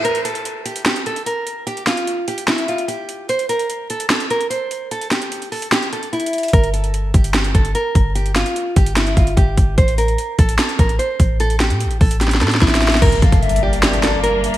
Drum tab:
CC |------------------------------------------------------------------------------------------------|------------------------------------------------------------------------------------------------|------------------------------------------------------------------------------------------------|------------------------------------------------------------------------------------------------|
HH |x-----x-----x-----x-----x-----------x-----x-----x-----x-----x-----x-----x-----------x-----------|x-----x-----x-----x-----x-----------x-----x-----x-----x-----x-----x-----x-----------x-----------|x-----x-----x-----x-----x-----------x-----x-----x-----x-----x-----x-----x-----------x-----------|x-----x-----x-----x-----x-----x-----o-----x-----x-----x-----x-----x-----x---x---x---x--x--x--x--|
SD |------------------------------------------------o-----------------------------------------------|------------o-----------------------------------o-----------------------------------------------|------------------------------------------------o-----------------------------------------------|------------o-----------------------------------o-----------------------------------------------|
BD |------------------------------------------------------------------------------------------------|------------------------------------------------------------------------------------------------|------------------------------------------------------------------------------------------------|------------------------------------------------------------------------------------------------|

CC |------------------------------------------------------------------------------------------------|------------------------------------------------------------------------------------------------|------------------------------------------------------------------------------------------------|------------------------------------------------------------------------------------------------|
HH |x-----x-----x-----x-----x-----------x-----x-----x-----x-----x-----x-----x-----------x-----------|x-----x-----x-----x-----x-----------x-----x-----x-----x-----x-----x-----x-----------x-----------|x-----x-----x-----x-----x-----------x-----x-----x-----x-----x-----x-----x-----------x-----------|x-----x-----x-----x-----x-----x-----o-----x-----x-----x-----x-----x-----x---x---x---x--x--x--x--|
SD |------------------------------------------------o-----------------------------------------------|------------o-----------------------------------o-----------------------------------------------|------------------------------------------------o-----------------------------------------------|------------o-----------------------------------o---o---o---o---o---o---o---o---o---o---o---o---|
BD |o-----------------------------------o-----------------------o-----------------------o-----------|------------------------------------o-----------------------o-----------o-----------o-----------|o-----------------------------------o-----------------------o-----------------------o-----------|------------------------------------o-----------------------------------o-----------------------|

CC |x-----------------------------------------------------------------------------------------------|
HH |x-----x-----x-----x-----x---x---x---------x-----x-----x-----x-----------x-----------x-----x-----|
SD |------------------------------------------------o-----------o-----------------------------------|
BD |o-----------o-----o-----------------------------------------------------------------------------|